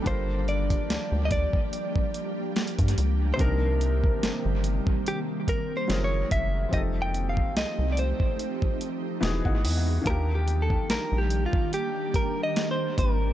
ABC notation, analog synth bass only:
X:1
M:4/4
L:1/16
Q:"Swing 16ths" 1/4=72
K:Cdor
V:1 name="Analog synth bass" clef=bass
G,,,4 D,, D,,2 z6 G,, _D,,2 | C,,4 G,,, G,,,2 z4 z ^F,,,2 F,,,2 | F,,,4 C,, C,,2 z4 z =E,,, ^G,,, =E,,2 | E,,4 B,,, B,,,2 z6 z _A,,,2 |]